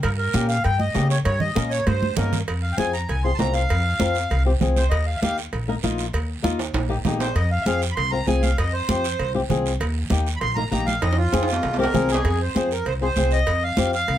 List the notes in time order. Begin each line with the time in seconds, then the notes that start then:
0.03 G2 A#4, cowbell, high conga, long guiro
0.18 A#4
0.33 A#2 A#3 C#4 G4, high conga, short guiro
0.49 F5, short guiro
0.64 G2 G5, cowbell, high conga, long guiro
0.79 D#5, high conga
0.94 C#3 A#3 C#4 G4, high conga, low timbale, short guiro
1.10 C#5, short guiro
1.25 G2 C#5, cowbell, high conga, long guiro
1.40 D#5, low conga
1.55 A#2 A#3 C#4 A#4, high conga, short guiro
1.71 C#5, short guiro
1.86 G2 C5, cowbell, high conga, long guiro
2.03 high conga
2.17 G2 A#3 C#4 D#4 A#4, low conga, low timbale, short guiro
2.33 low conga, short guiro
2.48 F2, cowbell, high conga, long guiro
2.62 F5
2.72 G5
2.77 F2 C4 F4 G#4 G#5, high conga, short guiro
2.93 A#5, short guiro
3.08 C2 G#5, cowbell, high conga, long guiro
3.24 C4 F4 G#4 C6
3.35 A5
3.39 C2 C4 F4 A#4 A#5, high conga, low timbale, short guiro
3.54 F5, short guiro
3.69 F2, cowbell, high conga, long guiro
4.00 F2 C4 F4 A#4, high conga, short guiro
4.15 short guiro
4.30 C2, cowbell, high conga, long guiro
4.45 C4 F4 G4
4.61 C2 C4 F4 G#4, high conga, low conga, short guiro
4.76 C5, high conga, short guiro
4.90 D#2 D#5, cowbell, high conga, long guiro
5.06 F5
5.17 E5
5.22 D#2 A#3 D#4 G4 F5, high conga, short guiro
5.38 short guiro
5.53 A#1, cowbell, high conga, long guiro
5.68 A#3 D#4 A#4
5.83 A#1 A#3 D#4 F4, high conga, short guiro
5.98 short guiro
6.13 D#2, cowbell, high conga, long guiro
6.43 D#2 A#3 D#4 F4, high conga, short guiro
6.59 high timbale, short guiro
6.73 A#1, cowbell, high conga, high timbale, long guiro
6.89 A#3 D#4 G4
7.05 A#1 A#3 D#4 G4, high conga, low conga, low timbale, short guiro
7.20 C5, low timbale, short guiro
7.35 F2 D#5, cowbell, high conga, long guiro
7.51 F5
7.62 F2 E5
7.66 C4 F4 G#4 F5, high conga, short guiro
7.82 short guiro
7.92 B5
7.96 C2 C6, cowbell, high conga, long guiro
8.11 C4 F4 A#4 A#5
8.27 C2 C4 F4 G#4 G#5, high conga, short guiro
8.42 F5, high conga, short guiro
8.58 F2 D#5, cowbell, high conga, long guiro
8.73 C5
8.89 F2 C4 F4 G4, high conga, short guiro
9.04 short guiro
9.19 C2, cowbell, high conga, long guiro
9.34 C4 F4 G4
9.49 C2 C4 F4 G#4, high conga, low conga, short guiro
9.66 short guiro
9.80 D#2, cowbell, high conga, long guiro
10.10 D#2 A#3 D#4 G4, high conga, short guiro
10.27 short guiro
10.36 B5
10.41 A#1 C6, cowbell, high conga, long guiro
10.55 A#3 D#4 A#4 A#5, high conga
10.71 A#1 A#3 D#4 G4 A#5, high conga, short guiro
10.86 F5, high conga, short guiro
11.01 F2 D#5, cowbell, high timbale, long guiro
11.13 high timbale
11.17 F4
11.32 F2 C4 F4 G#4, high conga, high timbale, short guiro
11.43 high timbale
11.48 short guiro
11.53 low timbale
11.63 C2, cowbell, high conga, low timbale, long guiro
11.74 low timbale
11.78 C4 F4 G4 A#4
11.84 low timbale
11.93 C2 C4 F4 G#4, high conga, low conga, short guiro
12.09 G#4, short guiro
12.14 low timbale
12.25 F2, cowbell, high conga, long guiro
12.42 C5
12.55 F2 C4 F4 G#4, high conga, short guiro
12.71 A#4, short guiro
12.85 C2 C5, cowbell, high conga, long guiro
13.01 C4 F4 G#4 C5
13.16 C2 C4 F4 G#4, high conga, short guiro
13.31 D#5, short guiro
13.47 F2, cowbell, high conga, long guiro
13.63 F5
13.77 F2 C4 F4 G4, high conga, short guiro
13.93 F5, short guiro
14.08 C2, cowbell, high conga, long guiro